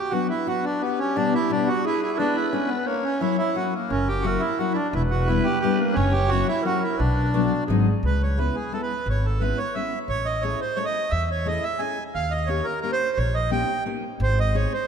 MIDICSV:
0, 0, Header, 1, 5, 480
1, 0, Start_track
1, 0, Tempo, 343249
1, 1140, Time_signature, 3, 2, 24, 8
1, 20797, End_track
2, 0, Start_track
2, 0, Title_t, "Clarinet"
2, 0, Program_c, 0, 71
2, 0, Note_on_c, 0, 66, 78
2, 193, Note_on_c, 0, 71, 88
2, 214, Note_off_c, 0, 66, 0
2, 1145, Note_off_c, 0, 71, 0
2, 1153, Note_on_c, 0, 67, 97
2, 2531, Note_off_c, 0, 67, 0
2, 2578, Note_on_c, 0, 68, 109
2, 3042, Note_on_c, 0, 71, 109
2, 3062, Note_off_c, 0, 68, 0
2, 4013, Note_on_c, 0, 73, 113
2, 4034, Note_off_c, 0, 71, 0
2, 4489, Note_off_c, 0, 73, 0
2, 4497, Note_on_c, 0, 73, 97
2, 5173, Note_off_c, 0, 73, 0
2, 5456, Note_on_c, 0, 70, 86
2, 5909, Note_off_c, 0, 70, 0
2, 5955, Note_on_c, 0, 70, 95
2, 6494, Note_off_c, 0, 70, 0
2, 6917, Note_on_c, 0, 71, 112
2, 8354, Note_on_c, 0, 73, 118
2, 8375, Note_off_c, 0, 71, 0
2, 9270, Note_on_c, 0, 70, 97
2, 9291, Note_off_c, 0, 73, 0
2, 9761, Note_on_c, 0, 71, 99
2, 9782, Note_off_c, 0, 70, 0
2, 10251, Note_off_c, 0, 71, 0
2, 10260, Note_on_c, 0, 66, 74
2, 10710, Note_off_c, 0, 66, 0
2, 10721, Note_on_c, 0, 68, 74
2, 11182, Note_off_c, 0, 68, 0
2, 20797, End_track
3, 0, Start_track
3, 0, Title_t, "Accordion"
3, 0, Program_c, 1, 21
3, 0, Note_on_c, 1, 67, 88
3, 140, Note_on_c, 1, 66, 89
3, 176, Note_off_c, 1, 67, 0
3, 385, Note_off_c, 1, 66, 0
3, 414, Note_on_c, 1, 64, 90
3, 660, Note_on_c, 1, 66, 88
3, 662, Note_off_c, 1, 64, 0
3, 906, Note_on_c, 1, 62, 85
3, 911, Note_off_c, 1, 66, 0
3, 1133, Note_on_c, 1, 59, 82
3, 1149, Note_off_c, 1, 62, 0
3, 1384, Note_on_c, 1, 61, 87
3, 1389, Note_off_c, 1, 59, 0
3, 1620, Note_on_c, 1, 62, 92
3, 1628, Note_off_c, 1, 61, 0
3, 1872, Note_off_c, 1, 62, 0
3, 1884, Note_on_c, 1, 64, 98
3, 2118, Note_off_c, 1, 64, 0
3, 2125, Note_on_c, 1, 62, 90
3, 2343, Note_on_c, 1, 66, 96
3, 2364, Note_off_c, 1, 62, 0
3, 2587, Note_off_c, 1, 66, 0
3, 2601, Note_on_c, 1, 64, 101
3, 2812, Note_off_c, 1, 64, 0
3, 2833, Note_on_c, 1, 64, 81
3, 3048, Note_off_c, 1, 64, 0
3, 3049, Note_on_c, 1, 62, 105
3, 3294, Note_on_c, 1, 64, 91
3, 3305, Note_off_c, 1, 62, 0
3, 3512, Note_on_c, 1, 61, 72
3, 3541, Note_off_c, 1, 64, 0
3, 3731, Note_on_c, 1, 59, 86
3, 3775, Note_off_c, 1, 61, 0
3, 3991, Note_on_c, 1, 58, 82
3, 3999, Note_off_c, 1, 59, 0
3, 4247, Note_on_c, 1, 61, 84
3, 4254, Note_off_c, 1, 58, 0
3, 4479, Note_on_c, 1, 64, 80
3, 4497, Note_off_c, 1, 61, 0
3, 4708, Note_off_c, 1, 64, 0
3, 4729, Note_on_c, 1, 64, 93
3, 4976, Note_on_c, 1, 66, 76
3, 4980, Note_off_c, 1, 64, 0
3, 5224, Note_on_c, 1, 58, 64
3, 5230, Note_off_c, 1, 66, 0
3, 5451, Note_on_c, 1, 61, 86
3, 5470, Note_off_c, 1, 58, 0
3, 5704, Note_on_c, 1, 67, 85
3, 5710, Note_off_c, 1, 61, 0
3, 5897, Note_on_c, 1, 66, 92
3, 5951, Note_off_c, 1, 67, 0
3, 6148, Note_on_c, 1, 64, 82
3, 6174, Note_off_c, 1, 66, 0
3, 6414, Note_off_c, 1, 64, 0
3, 6417, Note_on_c, 1, 66, 82
3, 6602, Note_on_c, 1, 64, 57
3, 6611, Note_off_c, 1, 66, 0
3, 6641, Note_on_c, 1, 62, 81
3, 6668, Note_off_c, 1, 64, 0
3, 6900, Note_off_c, 1, 62, 0
3, 6920, Note_on_c, 1, 64, 77
3, 7027, Note_off_c, 1, 64, 0
3, 7141, Note_on_c, 1, 66, 79
3, 7363, Note_on_c, 1, 64, 79
3, 7390, Note_off_c, 1, 66, 0
3, 7609, Note_on_c, 1, 67, 88
3, 7626, Note_off_c, 1, 64, 0
3, 7814, Note_off_c, 1, 67, 0
3, 7835, Note_on_c, 1, 67, 87
3, 8090, Note_on_c, 1, 58, 71
3, 8102, Note_off_c, 1, 67, 0
3, 8298, Note_on_c, 1, 61, 100
3, 8319, Note_off_c, 1, 58, 0
3, 8551, Note_on_c, 1, 67, 87
3, 8572, Note_off_c, 1, 61, 0
3, 8788, Note_on_c, 1, 66, 106
3, 8812, Note_off_c, 1, 67, 0
3, 9056, Note_off_c, 1, 66, 0
3, 9066, Note_on_c, 1, 64, 97
3, 9285, Note_off_c, 1, 64, 0
3, 9308, Note_on_c, 1, 66, 92
3, 9553, Note_on_c, 1, 64, 72
3, 9556, Note_off_c, 1, 66, 0
3, 9768, Note_on_c, 1, 62, 80
3, 9792, Note_off_c, 1, 64, 0
3, 10682, Note_off_c, 1, 62, 0
3, 11265, Note_on_c, 1, 71, 80
3, 11498, Note_off_c, 1, 71, 0
3, 11506, Note_on_c, 1, 73, 65
3, 11722, Note_on_c, 1, 71, 72
3, 11733, Note_off_c, 1, 73, 0
3, 11964, Note_on_c, 1, 68, 64
3, 11968, Note_off_c, 1, 71, 0
3, 12204, Note_off_c, 1, 68, 0
3, 12210, Note_on_c, 1, 69, 69
3, 12327, Note_off_c, 1, 69, 0
3, 12337, Note_on_c, 1, 71, 76
3, 12696, Note_off_c, 1, 71, 0
3, 12726, Note_on_c, 1, 73, 78
3, 12941, Note_on_c, 1, 69, 59
3, 12952, Note_off_c, 1, 73, 0
3, 13150, Note_on_c, 1, 71, 75
3, 13174, Note_off_c, 1, 69, 0
3, 13397, Note_on_c, 1, 73, 88
3, 13405, Note_off_c, 1, 71, 0
3, 13634, Note_on_c, 1, 76, 75
3, 13642, Note_off_c, 1, 73, 0
3, 13970, Note_off_c, 1, 76, 0
3, 14110, Note_on_c, 1, 73, 102
3, 14341, Note_on_c, 1, 75, 85
3, 14361, Note_off_c, 1, 73, 0
3, 14564, Note_on_c, 1, 73, 83
3, 14591, Note_off_c, 1, 75, 0
3, 14827, Note_off_c, 1, 73, 0
3, 14843, Note_on_c, 1, 72, 82
3, 15044, Note_on_c, 1, 73, 86
3, 15080, Note_off_c, 1, 72, 0
3, 15175, Note_on_c, 1, 75, 96
3, 15181, Note_off_c, 1, 73, 0
3, 15532, Note_on_c, 1, 76, 90
3, 15550, Note_off_c, 1, 75, 0
3, 15789, Note_off_c, 1, 76, 0
3, 15817, Note_on_c, 1, 73, 74
3, 16043, Note_on_c, 1, 75, 93
3, 16045, Note_off_c, 1, 73, 0
3, 16274, Note_on_c, 1, 76, 95
3, 16284, Note_off_c, 1, 75, 0
3, 16485, Note_on_c, 1, 80, 78
3, 16514, Note_off_c, 1, 76, 0
3, 16832, Note_off_c, 1, 80, 0
3, 16988, Note_on_c, 1, 77, 100
3, 17214, Note_on_c, 1, 75, 78
3, 17239, Note_off_c, 1, 77, 0
3, 17435, Note_on_c, 1, 73, 78
3, 17466, Note_off_c, 1, 75, 0
3, 17682, Note_on_c, 1, 70, 82
3, 17703, Note_off_c, 1, 73, 0
3, 17895, Note_off_c, 1, 70, 0
3, 17916, Note_on_c, 1, 70, 80
3, 18058, Note_off_c, 1, 70, 0
3, 18071, Note_on_c, 1, 72, 92
3, 18421, Note_on_c, 1, 73, 84
3, 18438, Note_off_c, 1, 72, 0
3, 18663, Note_on_c, 1, 75, 81
3, 18674, Note_off_c, 1, 73, 0
3, 18885, Note_off_c, 1, 75, 0
3, 18906, Note_on_c, 1, 79, 87
3, 19349, Note_off_c, 1, 79, 0
3, 19898, Note_on_c, 1, 72, 93
3, 20129, Note_off_c, 1, 72, 0
3, 20136, Note_on_c, 1, 75, 96
3, 20353, Note_on_c, 1, 73, 85
3, 20362, Note_off_c, 1, 75, 0
3, 20597, Note_off_c, 1, 73, 0
3, 20603, Note_on_c, 1, 72, 83
3, 20797, Note_off_c, 1, 72, 0
3, 20797, End_track
4, 0, Start_track
4, 0, Title_t, "Steel-string acoustic guitar"
4, 0, Program_c, 2, 25
4, 161, Note_on_c, 2, 54, 64
4, 168, Note_on_c, 2, 62, 58
4, 173, Note_on_c, 2, 59, 62
4, 182, Note_on_c, 2, 66, 63
4, 414, Note_off_c, 2, 54, 0
4, 417, Note_off_c, 2, 62, 0
4, 421, Note_off_c, 2, 59, 0
4, 422, Note_off_c, 2, 66, 0
4, 651, Note_on_c, 2, 54, 53
4, 660, Note_on_c, 2, 59, 55
4, 661, Note_on_c, 2, 62, 50
4, 665, Note_on_c, 2, 66, 64
4, 901, Note_off_c, 2, 54, 0
4, 901, Note_off_c, 2, 62, 0
4, 903, Note_off_c, 2, 59, 0
4, 906, Note_off_c, 2, 66, 0
4, 1622, Note_on_c, 2, 47, 67
4, 1626, Note_on_c, 2, 55, 58
4, 1631, Note_on_c, 2, 66, 68
4, 1633, Note_on_c, 2, 59, 69
4, 1634, Note_on_c, 2, 62, 68
4, 1866, Note_off_c, 2, 55, 0
4, 1867, Note_off_c, 2, 47, 0
4, 1868, Note_off_c, 2, 59, 0
4, 1870, Note_off_c, 2, 66, 0
4, 1872, Note_off_c, 2, 62, 0
4, 2087, Note_on_c, 2, 47, 66
4, 2098, Note_on_c, 2, 55, 58
4, 2098, Note_on_c, 2, 59, 55
4, 2102, Note_on_c, 2, 62, 59
4, 2107, Note_on_c, 2, 66, 59
4, 2339, Note_off_c, 2, 47, 0
4, 2341, Note_off_c, 2, 55, 0
4, 2343, Note_off_c, 2, 59, 0
4, 2344, Note_off_c, 2, 62, 0
4, 2348, Note_off_c, 2, 66, 0
4, 3064, Note_on_c, 2, 56, 63
4, 3067, Note_on_c, 2, 62, 58
4, 3073, Note_on_c, 2, 59, 64
4, 3083, Note_on_c, 2, 64, 77
4, 3305, Note_off_c, 2, 56, 0
4, 3308, Note_off_c, 2, 59, 0
4, 3309, Note_off_c, 2, 62, 0
4, 3309, Note_off_c, 2, 64, 0
4, 3532, Note_on_c, 2, 56, 54
4, 3534, Note_on_c, 2, 62, 54
4, 3538, Note_on_c, 2, 59, 57
4, 3544, Note_on_c, 2, 64, 68
4, 3778, Note_off_c, 2, 62, 0
4, 3779, Note_off_c, 2, 56, 0
4, 3780, Note_off_c, 2, 64, 0
4, 3781, Note_off_c, 2, 59, 0
4, 4486, Note_on_c, 2, 54, 70
4, 4492, Note_on_c, 2, 58, 55
4, 4503, Note_on_c, 2, 64, 64
4, 4504, Note_on_c, 2, 61, 60
4, 4736, Note_off_c, 2, 54, 0
4, 4739, Note_off_c, 2, 58, 0
4, 4744, Note_off_c, 2, 64, 0
4, 4745, Note_off_c, 2, 61, 0
4, 4962, Note_on_c, 2, 54, 56
4, 4967, Note_on_c, 2, 58, 54
4, 4970, Note_on_c, 2, 61, 54
4, 4977, Note_on_c, 2, 64, 69
4, 5216, Note_off_c, 2, 54, 0
4, 5219, Note_off_c, 2, 58, 0
4, 5219, Note_off_c, 2, 61, 0
4, 5220, Note_off_c, 2, 64, 0
4, 5925, Note_on_c, 2, 54, 59
4, 5935, Note_on_c, 2, 58, 60
4, 5936, Note_on_c, 2, 61, 60
4, 5946, Note_on_c, 2, 64, 72
4, 6181, Note_off_c, 2, 54, 0
4, 6182, Note_off_c, 2, 58, 0
4, 6186, Note_off_c, 2, 61, 0
4, 6189, Note_off_c, 2, 64, 0
4, 6418, Note_on_c, 2, 54, 55
4, 6422, Note_on_c, 2, 58, 56
4, 6433, Note_on_c, 2, 61, 64
4, 6437, Note_on_c, 2, 64, 63
4, 6667, Note_off_c, 2, 54, 0
4, 6671, Note_off_c, 2, 58, 0
4, 6672, Note_off_c, 2, 61, 0
4, 6677, Note_off_c, 2, 64, 0
4, 7388, Note_on_c, 2, 55, 65
4, 7394, Note_on_c, 2, 59, 63
4, 7402, Note_on_c, 2, 62, 61
4, 7406, Note_on_c, 2, 64, 82
4, 7631, Note_off_c, 2, 55, 0
4, 7633, Note_off_c, 2, 59, 0
4, 7638, Note_off_c, 2, 62, 0
4, 7639, Note_off_c, 2, 64, 0
4, 7874, Note_on_c, 2, 55, 69
4, 7884, Note_on_c, 2, 59, 54
4, 7886, Note_on_c, 2, 64, 68
4, 7889, Note_on_c, 2, 62, 60
4, 8115, Note_off_c, 2, 55, 0
4, 8117, Note_off_c, 2, 59, 0
4, 8117, Note_off_c, 2, 62, 0
4, 8120, Note_off_c, 2, 64, 0
4, 8839, Note_on_c, 2, 54, 75
4, 8844, Note_on_c, 2, 58, 67
4, 8849, Note_on_c, 2, 61, 66
4, 8854, Note_on_c, 2, 64, 89
4, 9074, Note_off_c, 2, 58, 0
4, 9074, Note_off_c, 2, 61, 0
4, 9075, Note_off_c, 2, 54, 0
4, 9081, Note_off_c, 2, 64, 0
4, 9293, Note_on_c, 2, 54, 55
4, 9302, Note_on_c, 2, 58, 59
4, 9309, Note_on_c, 2, 61, 63
4, 9312, Note_on_c, 2, 64, 60
4, 9541, Note_off_c, 2, 54, 0
4, 9545, Note_off_c, 2, 58, 0
4, 9546, Note_off_c, 2, 61, 0
4, 9550, Note_off_c, 2, 64, 0
4, 10262, Note_on_c, 2, 57, 67
4, 10263, Note_on_c, 2, 54, 71
4, 10268, Note_on_c, 2, 62, 79
4, 10275, Note_on_c, 2, 59, 60
4, 10505, Note_off_c, 2, 57, 0
4, 10507, Note_off_c, 2, 54, 0
4, 10510, Note_off_c, 2, 62, 0
4, 10512, Note_off_c, 2, 59, 0
4, 10762, Note_on_c, 2, 54, 76
4, 10768, Note_on_c, 2, 56, 62
4, 10771, Note_on_c, 2, 60, 66
4, 10772, Note_on_c, 2, 63, 82
4, 11001, Note_off_c, 2, 54, 0
4, 11002, Note_off_c, 2, 56, 0
4, 11002, Note_off_c, 2, 60, 0
4, 11005, Note_off_c, 2, 63, 0
4, 11713, Note_on_c, 2, 56, 61
4, 11724, Note_on_c, 2, 59, 57
4, 11724, Note_on_c, 2, 61, 55
4, 11728, Note_on_c, 2, 64, 61
4, 11958, Note_off_c, 2, 56, 0
4, 11961, Note_off_c, 2, 59, 0
4, 11961, Note_off_c, 2, 64, 0
4, 11962, Note_off_c, 2, 61, 0
4, 12197, Note_on_c, 2, 56, 56
4, 12203, Note_on_c, 2, 59, 55
4, 12206, Note_on_c, 2, 61, 51
4, 12212, Note_on_c, 2, 64, 59
4, 12440, Note_off_c, 2, 56, 0
4, 12442, Note_off_c, 2, 59, 0
4, 12444, Note_off_c, 2, 61, 0
4, 12447, Note_off_c, 2, 64, 0
4, 13158, Note_on_c, 2, 56, 66
4, 13167, Note_on_c, 2, 61, 61
4, 13173, Note_on_c, 2, 59, 61
4, 13176, Note_on_c, 2, 64, 62
4, 13402, Note_off_c, 2, 56, 0
4, 13406, Note_off_c, 2, 61, 0
4, 13409, Note_off_c, 2, 59, 0
4, 13410, Note_off_c, 2, 64, 0
4, 13639, Note_on_c, 2, 56, 52
4, 13647, Note_on_c, 2, 59, 54
4, 13652, Note_on_c, 2, 61, 47
4, 13659, Note_on_c, 2, 64, 63
4, 13881, Note_off_c, 2, 56, 0
4, 13882, Note_off_c, 2, 59, 0
4, 13887, Note_off_c, 2, 61, 0
4, 13889, Note_off_c, 2, 64, 0
4, 14587, Note_on_c, 2, 57, 56
4, 14591, Note_on_c, 2, 61, 59
4, 14599, Note_on_c, 2, 68, 64
4, 14601, Note_on_c, 2, 64, 53
4, 14832, Note_off_c, 2, 57, 0
4, 14833, Note_off_c, 2, 61, 0
4, 14835, Note_off_c, 2, 64, 0
4, 14835, Note_off_c, 2, 68, 0
4, 15055, Note_on_c, 2, 57, 60
4, 15061, Note_on_c, 2, 61, 55
4, 15061, Note_on_c, 2, 64, 47
4, 15069, Note_on_c, 2, 68, 64
4, 15304, Note_off_c, 2, 64, 0
4, 15306, Note_off_c, 2, 57, 0
4, 15306, Note_off_c, 2, 61, 0
4, 15311, Note_off_c, 2, 68, 0
4, 16017, Note_on_c, 2, 57, 66
4, 16019, Note_on_c, 2, 61, 50
4, 16028, Note_on_c, 2, 68, 67
4, 16033, Note_on_c, 2, 64, 58
4, 16265, Note_off_c, 2, 61, 0
4, 16266, Note_off_c, 2, 57, 0
4, 16267, Note_off_c, 2, 64, 0
4, 16267, Note_off_c, 2, 68, 0
4, 16486, Note_on_c, 2, 61, 47
4, 16490, Note_on_c, 2, 57, 52
4, 16494, Note_on_c, 2, 68, 58
4, 16499, Note_on_c, 2, 64, 50
4, 16739, Note_off_c, 2, 61, 0
4, 16742, Note_off_c, 2, 57, 0
4, 16743, Note_off_c, 2, 68, 0
4, 16744, Note_off_c, 2, 64, 0
4, 17457, Note_on_c, 2, 58, 53
4, 17463, Note_on_c, 2, 61, 55
4, 17468, Note_on_c, 2, 63, 49
4, 17474, Note_on_c, 2, 67, 68
4, 17706, Note_off_c, 2, 58, 0
4, 17709, Note_off_c, 2, 61, 0
4, 17711, Note_off_c, 2, 63, 0
4, 17715, Note_off_c, 2, 67, 0
4, 17946, Note_on_c, 2, 58, 55
4, 17952, Note_on_c, 2, 61, 47
4, 17961, Note_on_c, 2, 63, 53
4, 17966, Note_on_c, 2, 67, 59
4, 18193, Note_off_c, 2, 58, 0
4, 18193, Note_off_c, 2, 61, 0
4, 18195, Note_off_c, 2, 63, 0
4, 18195, Note_off_c, 2, 67, 0
4, 18887, Note_on_c, 2, 58, 69
4, 18895, Note_on_c, 2, 61, 64
4, 18902, Note_on_c, 2, 63, 66
4, 18908, Note_on_c, 2, 67, 69
4, 19139, Note_off_c, 2, 58, 0
4, 19143, Note_off_c, 2, 61, 0
4, 19144, Note_off_c, 2, 63, 0
4, 19149, Note_off_c, 2, 67, 0
4, 19379, Note_on_c, 2, 58, 67
4, 19387, Note_on_c, 2, 61, 50
4, 19391, Note_on_c, 2, 63, 60
4, 19392, Note_on_c, 2, 67, 60
4, 19624, Note_off_c, 2, 58, 0
4, 19625, Note_off_c, 2, 61, 0
4, 19627, Note_off_c, 2, 67, 0
4, 19630, Note_off_c, 2, 63, 0
4, 20330, Note_on_c, 2, 56, 68
4, 20339, Note_on_c, 2, 60, 66
4, 20344, Note_on_c, 2, 63, 67
4, 20350, Note_on_c, 2, 68, 76
4, 20580, Note_off_c, 2, 56, 0
4, 20581, Note_off_c, 2, 60, 0
4, 20586, Note_off_c, 2, 63, 0
4, 20589, Note_off_c, 2, 68, 0
4, 20797, End_track
5, 0, Start_track
5, 0, Title_t, "Upright bass"
5, 0, Program_c, 3, 32
5, 5459, Note_on_c, 3, 30, 96
5, 6087, Note_off_c, 3, 30, 0
5, 6899, Note_on_c, 3, 28, 111
5, 7525, Note_off_c, 3, 28, 0
5, 8343, Note_on_c, 3, 30, 112
5, 8965, Note_off_c, 3, 30, 0
5, 9785, Note_on_c, 3, 35, 99
5, 10410, Note_off_c, 3, 35, 0
5, 10742, Note_on_c, 3, 32, 99
5, 11057, Note_off_c, 3, 32, 0
5, 11227, Note_on_c, 3, 37, 98
5, 11854, Note_off_c, 3, 37, 0
5, 12672, Note_on_c, 3, 32, 98
5, 13298, Note_off_c, 3, 32, 0
5, 14096, Note_on_c, 3, 33, 89
5, 14722, Note_off_c, 3, 33, 0
5, 15549, Note_on_c, 3, 40, 89
5, 16171, Note_off_c, 3, 40, 0
5, 16987, Note_on_c, 3, 39, 85
5, 17612, Note_off_c, 3, 39, 0
5, 18425, Note_on_c, 3, 34, 94
5, 19047, Note_off_c, 3, 34, 0
5, 19856, Note_on_c, 3, 32, 109
5, 20481, Note_off_c, 3, 32, 0
5, 20797, End_track
0, 0, End_of_file